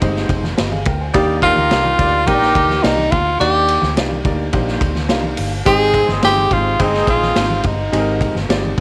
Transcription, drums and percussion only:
0.01 kick medium
0.01 ride medium
0.01 muted conga soft
0.01 high conga medium
0.16 snare soft
0.29 kick loud
0.29 ride medium
0.29 muted conga soft
0.44 snare soft
0.44 high conga medium
0.58 snare loud
0.58 ride medium
0.58 muted conga soft
0.72 high conga medium
0.85 kick loud
0.85 ride medium
1.14 kick loud
1.14 ride medium
1.14 low conga medium
1.42 kick medium
1.42 ride medium
1.42 muted conga soft
1.56 high conga medium
1.70 snare loud
1.70 ride medium
1.70 muted conga soft
1.85 high conga medium
1.98 kick medium
1.98 ride medium
1.98 muted conga soft
1.98 low conga medium
2.26 kick medium
2.26 ride medium
2.26 muted conga soft
2.26 high conga medium
2.42 snare soft
2.55 kick loud
2.55 ride medium
2.55 muted conga soft
2.69 snare soft
2.69 high conga medium
2.84 snare loud
2.84 ride medium
2.84 muted conga soft
2.97 high conga medium
3.12 kick loud
3.12 ride medium
3.12 muted conga soft
3.39 ride medium
3.39 muted conga soft
3.39 low conga medium
3.68 ride medium
3.82 snare soft
3.82 high conga medium
3.96 snare loud
3.96 ride medium
3.96 muted conga soft
4.11 high conga medium
4.24 kick medium
4.24 ride medium
4.24 low conga medium
4.53 kick medium
4.53 ride medium
4.53 high conga medium
4.68 snare soft
4.81 kick loud
4.81 ride medium
4.81 muted conga soft
4.95 snare soft
4.95 high conga medium
5.09 snare loud
5.09 ride medium
5.09 muted conga soft
5.23 high conga medium
5.37 open hi-hat medium
5.37 ride medium
5.37 muted conga soft
5.66 kick loud
5.66 hi-hat pedal medium
5.66 ride medium
5.66 muted conga soft
5.66 low conga medium
5.94 kick medium
5.94 ride medium
5.94 muted conga soft
6.08 snare soft
6.08 high conga medium
6.23 snare loud
6.23 ride medium
6.37 high conga medium
6.51 kick medium
6.51 ride medium
6.51 muted conga soft
6.51 low conga medium
6.79 kick medium
6.79 ride medium
6.79 muted conga soft
6.79 high conga medium
6.94 snare soft
7.07 kick medium
7.07 ride medium
7.07 muted conga soft
7.22 snare soft
7.22 high conga medium
7.36 snare medium
7.36 ride medium
7.36 muted conga soft
7.50 high conga medium
7.64 kick loud
7.64 ride medium
7.64 muted conga soft
7.93 ride medium
7.93 low conga medium
8.21 kick medium
8.21 ride medium
8.35 snare soft
8.35 high conga medium
8.50 snare loud
8.50 ride medium
8.50 muted conga soft
8.64 high conga medium

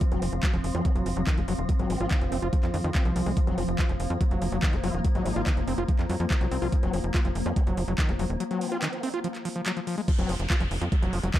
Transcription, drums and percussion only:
0.01 kick loud
0.01 closed hi-hat medium
0.12 closed hi-hat soft
0.22 open hi-hat loud
0.33 closed hi-hat soft
0.43 kick loud
0.43 clap loud
0.43 closed hi-hat medium
0.54 closed hi-hat soft
0.64 open hi-hat loud
0.85 kick loud
0.85 closed hi-hat medium
0.96 closed hi-hat soft
1.06 open hi-hat loud
1.17 closed hi-hat soft
1.27 kick loud
1.27 clap loud
1.27 closed hi-hat loud
1.37 closed hi-hat soft
1.48 open hi-hat loud
1.69 kick loud
1.69 closed hi-hat medium
1.79 closed hi-hat soft
1.90 open hi-hat loud
2.11 kick loud
2.11 clap loud
2.11 closed hi-hat medium
2.21 closed hi-hat soft
2.32 open hi-hat loud
2.42 closed hi-hat soft
2.53 kick loud
2.53 closed hi-hat medium
2.63 clap soft
2.63 closed hi-hat soft
2.74 open hi-hat loud
2.84 closed hi-hat soft
2.95 kick loud
2.95 clap loud
2.95 closed hi-hat medium
3.05 closed hi-hat soft
3.16 open hi-hat loud
3.26 open hi-hat medium
3.37 kick loud
3.37 closed hi-hat medium
3.47 closed hi-hat soft
3.58 open hi-hat loud
3.68 closed hi-hat soft
3.79 kick loud
3.79 clap loud
3.79 closed hi-hat medium
3.89 closed hi-hat soft
4.00 open hi-hat loud
4.10 closed hi-hat soft
4.21 kick loud
4.21 closed hi-hat medium
4.31 closed hi-hat soft
4.42 open hi-hat loud
4.52 closed hi-hat soft
4.63 kick loud
4.63 clap loud
4.63 closed hi-hat medium
4.73 closed hi-hat soft
4.84 open hi-hat loud
4.94 closed hi-hat soft
5.05 kick loud
5.05 closed hi-hat loud
5.15 closed hi-hat soft
5.26 open hi-hat loud
5.36 closed hi-hat soft
5.47 kick loud
5.47 clap loud
5.47 closed hi-hat medium
5.57 closed hi-hat soft
5.68 open hi-hat loud
5.78 closed hi-hat soft
5.89 kick loud
5.89 closed hi-hat medium
5.99 clap soft
5.99 closed hi-hat soft
6.09 open hi-hat medium
6.20 closed hi-hat soft
6.30 kick loud
6.30 clap loud
6.30 closed hi-hat loud
6.41 closed hi-hat soft
6.51 open hi-hat loud
6.62 open hi-hat medium
6.72 kick loud
6.72 closed hi-hat loud
6.83 closed hi-hat soft
6.93 open hi-hat loud
7.14 kick loud
7.14 clap loud
7.14 closed hi-hat medium
7.25 closed hi-hat soft
7.35 open hi-hat loud
7.46 closed hi-hat soft
7.56 kick loud
7.56 closed hi-hat loud
7.67 closed hi-hat soft
7.77 open hi-hat loud
7.88 closed hi-hat soft
7.98 kick loud
7.98 clap loud
7.98 closed hi-hat loud
8.09 closed hi-hat soft
8.19 open hi-hat medium
8.30 closed hi-hat soft
8.40 closed hi-hat loud
8.51 closed hi-hat soft
8.61 open hi-hat loud
8.72 closed hi-hat soft
8.82 clap loud
8.82 closed hi-hat medium
8.93 closed hi-hat soft
9.03 open hi-hat loud
9.14 closed hi-hat soft
9.24 closed hi-hat loud
9.35 clap soft
9.35 closed hi-hat soft
9.45 open hi-hat loud
9.56 closed hi-hat soft
9.66 clap loud
9.66 closed hi-hat loud
9.77 closed hi-hat soft
9.87 open hi-hat loud
9.98 open hi-hat medium
10.08 kick loud
10.08 closed hi-hat medium
10.08 crash loud
10.19 closed hi-hat medium
10.29 open hi-hat loud
10.40 closed hi-hat medium
10.50 kick loud
10.50 clap loud
10.50 closed hi-hat medium
10.61 closed hi-hat medium
10.71 open hi-hat loud
10.82 closed hi-hat medium
10.92 kick loud
10.92 closed hi-hat medium
11.03 closed hi-hat medium
11.13 open hi-hat loud
11.23 closed hi-hat medium
11.34 kick loud
11.34 clap loud
11.34 closed hi-hat medium

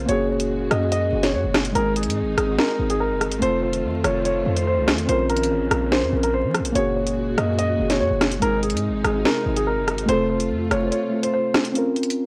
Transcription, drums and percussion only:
0.09 closed hi-hat medium
0.40 closed hi-hat medium
0.71 cross-stick medium
0.71 closed hi-hat medium
0.92 closed hi-hat medium
1.23 snare medium
1.23 closed hi-hat medium
1.54 cross-stick medium
1.54 snare loud
1.54 closed hi-hat medium
1.65 closed hi-hat medium
1.75 closed hi-hat medium
1.96 closed hi-hat medium
2.03 closed hi-hat medium
2.10 closed hi-hat medium
2.38 cross-stick medium
2.38 closed hi-hat medium
2.59 snare loud
2.90 closed hi-hat medium
3.21 cross-stick medium
3.21 closed hi-hat medium
3.31 closed hi-hat medium
3.42 closed hi-hat medium
3.73 closed hi-hat medium
4.04 cross-stick medium
4.04 closed hi-hat medium
4.25 closed hi-hat medium
4.57 closed hi-hat medium
4.88 cross-stick medium
4.88 snare loud
4.88 closed hi-hat medium
4.98 closed hi-hat medium
5.09 closed hi-hat medium
5.29 closed hi-hat medium
5.36 closed hi-hat medium
5.43 closed hi-hat medium
5.71 cross-stick loud
5.71 closed hi-hat medium
5.92 snare loud
6.23 closed hi-hat medium
6.54 cross-stick medium
6.54 closed hi-hat medium
6.65 closed hi-hat medium
6.75 closed hi-hat medium
7.07 closed hi-hat medium
7.38 cross-stick loud
7.38 closed hi-hat medium
7.59 closed hi-hat medium
7.90 snare medium
7.90 closed hi-hat medium
8.21 cross-stick medium
8.21 snare loud
8.21 closed hi-hat medium
8.32 closed hi-hat medium
8.42 closed hi-hat medium
8.63 closed hi-hat medium
8.70 closed hi-hat medium
8.77 closed hi-hat medium
9.04 cross-stick loud
9.04 closed hi-hat medium
9.25 snare loud
9.57 closed hi-hat medium
9.88 cross-stick medium
9.88 closed hi-hat medium
9.98 closed hi-hat medium
10.09 closed hi-hat medium
10.40 closed hi-hat medium
10.71 cross-stick medium
10.71 closed hi-hat medium
10.92 closed hi-hat medium
11.23 closed hi-hat medium
11.54 cross-stick medium
11.54 snare loud
11.54 closed hi-hat medium
11.65 closed hi-hat medium
11.75 closed hi-hat medium
11.96 closed hi-hat medium
12.03 closed hi-hat medium
12.10 closed hi-hat medium

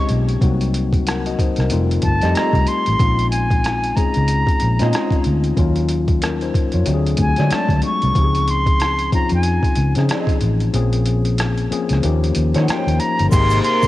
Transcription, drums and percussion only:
0.09 closed hi-hat medium
0.29 closed hi-hat soft
0.41 kick loud
0.41 closed hi-hat medium
0.61 closed hi-hat soft
0.74 closed hi-hat medium
0.93 kick medium
0.93 closed hi-hat soft
1.07 cross-stick medium
1.07 closed hi-hat medium
1.26 closed hi-hat soft
1.39 kick medium
1.39 closed hi-hat medium
1.56 cross-stick soft
1.56 closed hi-hat soft
1.70 closed hi-hat medium
1.91 closed hi-hat soft
2.02 kick medium
2.02 closed hi-hat medium
2.22 cross-stick soft
2.22 closed hi-hat soft
2.35 cross-stick loud
2.35 closed hi-hat medium
2.53 kick medium
2.53 closed hi-hat soft
2.67 closed hi-hat medium
2.86 closed hi-hat soft
2.99 kick loud
2.99 closed hi-hat medium
3.19 closed hi-hat soft
3.32 closed hi-hat medium
3.51 kick medium
3.51 closed hi-hat soft
3.64 cross-stick medium
3.64 closed hi-hat medium
3.84 closed hi-hat soft
3.97 kick medium
3.97 closed hi-hat medium
4.14 closed hi-hat soft
4.28 closed hi-hat medium
4.47 kick medium
4.47 closed hi-hat soft
4.60 closed hi-hat medium
4.79 cross-stick soft
4.79 closed hi-hat soft
4.93 cross-stick loud
4.93 closed hi-hat medium
5.11 kick medium
5.11 closed hi-hat soft
5.24 closed hi-hat medium
5.44 closed hi-hat soft
5.57 kick loud
5.57 closed hi-hat medium
5.76 closed hi-hat soft
5.89 closed hi-hat medium
6.08 kick medium
6.08 closed hi-hat soft
6.22 cross-stick loud
6.22 closed hi-hat medium
6.41 closed hi-hat soft
6.54 kick medium
6.54 closed hi-hat medium
6.72 closed hi-hat soft
6.86 closed hi-hat medium
7.07 closed hi-hat soft
7.17 kick medium
7.17 closed hi-hat medium
7.36 cross-stick soft
7.36 closed hi-hat soft
7.50 cross-stick loud
7.50 closed hi-hat medium
7.68 kick medium
7.68 closed hi-hat soft
7.82 closed hi-hat medium
8.02 closed hi-hat soft
8.15 kick loud
8.15 closed hi-hat medium
8.35 closed hi-hat soft
8.48 closed hi-hat medium
8.66 kick medium
8.66 closed hi-hat soft
8.80 cross-stick medium
8.80 closed hi-hat medium
8.99 closed hi-hat soft
9.12 kick medium
9.12 closed hi-hat medium
9.29 closed hi-hat soft
9.43 closed hi-hat medium
9.63 kick medium
9.63 closed hi-hat soft
9.75 closed hi-hat medium
9.95 cross-stick soft
9.95 closed hi-hat soft
10.09 cross-stick loud
10.09 closed hi-hat medium
10.27 kick medium
10.27 closed hi-hat soft
10.41 closed hi-hat medium
10.60 closed hi-hat soft
10.74 closed hi-hat medium
10.93 closed hi-hat soft
11.06 closed hi-hat medium
11.25 closed hi-hat soft
11.38 cross-stick medium
11.38 closed hi-hat medium
11.58 closed hi-hat soft
11.72 closed hi-hat medium
11.89 cross-stick soft
11.89 closed hi-hat soft
12.03 closed hi-hat medium
12.24 closed hi-hat soft
12.35 closed hi-hat medium
12.54 cross-stick soft
12.54 closed hi-hat soft
12.68 cross-stick loud
12.68 closed hi-hat medium
12.88 closed hi-hat soft
13.00 closed hi-hat medium
13.19 closed hi-hat soft
13.32 kick loud
13.32 closed hi-hat medium
13.32 crash loud
13.32 shaker medium
13.50 closed hi-hat medium
13.50 shaker soft
13.64 closed hi-hat medium
13.82 kick medium
13.82 closed hi-hat soft
13.82 shaker soft

